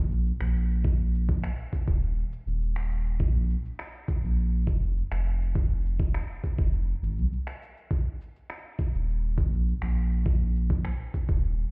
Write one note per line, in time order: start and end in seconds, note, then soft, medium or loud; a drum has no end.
0.00 0.32 A#1 medium
0.12 cabasa soft
0.27 cabasa soft
0.41 1.50 A#1 loud
0.41 finger snap medium
0.56 cabasa medium
0.71 cabasa soft
0.84 kick loud
0.84 cabasa soft
1.15 cabasa medium
1.29 kick loud
1.29 cabasa soft
1.44 finger snap medium
1.44 cabasa soft
1.73 kick medium
1.73 cabasa medium
1.87 2.23 D#1 medium
1.87 kick loud
1.87 cabasa soft
2.03 cabasa soft
2.33 cabasa medium
2.46 3.22 D#1 loud
2.46 cabasa soft
2.62 cabasa soft
2.76 finger snap medium
2.91 cabasa medium
3.06 cabasa soft
3.20 3.55 A#1 loud
3.20 kick loud
3.20 cabasa soft
3.50 cabasa medium
3.65 cabasa soft
3.79 finger snap medium
3.79 cabasa soft
4.08 kick loud
4.08 cabasa medium
4.23 4.68 A#1 loud
4.23 cabasa soft
4.39 cabasa soft
4.67 5.02 F1 medium
4.67 kick loud
4.67 cabasa medium
4.83 cabasa soft
4.98 cabasa soft
5.12 6.20 F1 loud
5.12 finger snap medium
5.27 cabasa medium
5.42 cabasa soft
5.55 kick loud
5.55 cabasa soft
5.86 cabasa medium
6.00 kick loud
6.00 cabasa soft
6.14 finger snap medium
6.14 cabasa soft
6.44 kick medium
6.44 cabasa medium
6.58 6.94 F1 medium
6.58 kick loud
6.58 cabasa soft
6.74 cabasa soft
7.02 7.18 G#1 medium
7.02 cabasa medium
7.17 7.26 C2 medium
7.17 cabasa soft
7.33 cabasa soft
7.47 finger snap medium
7.62 cabasa medium
7.77 cabasa soft
7.91 kick loud
7.91 cabasa soft
8.21 cabasa medium
8.36 cabasa soft
8.50 finger snap medium
8.50 cabasa soft
8.79 kick loud
8.79 cabasa medium
8.94 9.39 D#1 loud
8.94 cabasa soft
9.09 cabasa soft
9.38 9.73 A#1 medium
9.38 kick loud
9.38 cabasa medium
9.53 cabasa soft
9.68 cabasa soft
9.82 10.91 A#1 medium
9.82 finger snap medium
9.97 cabasa medium
10.12 cabasa soft
10.26 kick loud
10.26 cabasa soft
10.56 cabasa medium
10.70 kick loud
10.70 cabasa soft
10.85 finger snap medium
10.85 cabasa soft
11.14 kick medium
11.14 cabasa medium
11.29 11.64 D#1 loud
11.29 kick loud
11.29 cabasa soft
11.44 cabasa soft